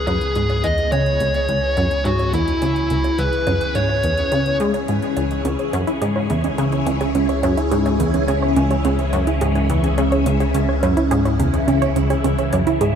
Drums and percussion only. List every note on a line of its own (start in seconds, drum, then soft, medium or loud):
0.07 closed hi-hat medium
0.07 low bongo soft
0.21 closed hi-hat medium
0.35 closed hi-hat medium
0.50 closed hi-hat soft
0.50 low bongo soft
0.64 closed hi-hat medium
0.78 closed hi-hat medium
0.92 closed hi-hat medium
0.92 low bongo soft
1.06 closed hi-hat soft
1.20 closed hi-hat medium
1.34 closed hi-hat medium
1.34 low bongo soft
1.49 closed hi-hat medium
1.77 closed hi-hat medium
1.77 low bongo soft
1.91 closed hi-hat medium
2.05 closed hi-hat medium
2.19 closed hi-hat soft
2.19 low bongo soft
2.33 closed hi-hat medium
2.48 closed hi-hat medium
2.62 closed hi-hat medium
2.62 low bongo soft
2.76 closed hi-hat soft
2.90 closed hi-hat medium
3.04 closed hi-hat medium
3.04 low bongo soft
3.19 closed hi-hat medium
3.33 closed hi-hat soft
3.47 closed hi-hat medium
3.47 low bongo soft
3.61 closed hi-hat medium
3.75 closed hi-hat medium
3.89 low bongo soft
4.03 closed hi-hat medium
4.18 closed hi-hat soft
4.32 closed hi-hat medium
4.32 low bongo soft
4.46 closed hi-hat soft
4.60 closed hi-hat medium
4.74 closed hi-hat medium
4.74 low bongo soft
4.88 closed hi-hat medium
5.02 closed hi-hat soft
5.17 closed hi-hat medium
5.17 low bongo soft
5.31 closed hi-hat medium
5.45 closed hi-hat medium
5.59 closed hi-hat soft
5.73 closed hi-hat medium
5.73 low bongo soft
5.87 closed hi-hat medium
6.02 closed hi-hat medium
6.16 low bongo soft
6.30 closed hi-hat medium
6.44 closed hi-hat soft
6.58 closed hi-hat medium
6.58 low bongo soft
6.72 closed hi-hat soft
6.87 closed hi-hat medium
7.01 closed hi-hat medium
7.01 low bongo soft
7.15 closed hi-hat medium
7.29 closed hi-hat soft
7.43 closed hi-hat medium
7.43 low bongo soft
7.58 closed hi-hat soft
7.72 closed hi-hat medium
7.86 closed hi-hat soft
7.86 low bongo soft
8.00 closed hi-hat medium
8.14 closed hi-hat soft
8.28 closed hi-hat medium
8.28 low bongo soft
8.56 closed hi-hat medium
8.71 closed hi-hat soft
8.71 low bongo soft
8.85 closed hi-hat medium
8.99 closed hi-hat soft
9.13 closed hi-hat medium
9.13 low bongo soft
9.27 closed hi-hat soft
9.41 closed hi-hat medium
9.55 closed hi-hat soft
9.55 low bongo soft
9.70 closed hi-hat medium
9.84 closed hi-hat soft
9.98 closed hi-hat medium
9.98 low bongo soft
10.12 closed hi-hat soft
10.26 closed hi-hat medium
10.40 closed hi-hat soft
10.40 low bongo soft
10.54 closed hi-hat medium
10.83 closed hi-hat medium
10.83 low bongo soft
10.97 closed hi-hat soft
11.11 closed hi-hat medium
11.25 closed hi-hat soft
11.25 low bongo soft
11.40 closed hi-hat medium
11.54 closed hi-hat medium
11.68 closed hi-hat medium
11.68 low bongo soft
11.82 closed hi-hat soft
11.96 closed hi-hat medium
12.10 closed hi-hat soft
12.10 low bongo soft
12.24 closed hi-hat medium
12.39 closed hi-hat soft
12.53 closed hi-hat medium
12.53 low bongo soft
12.67 closed hi-hat soft
12.81 closed hi-hat medium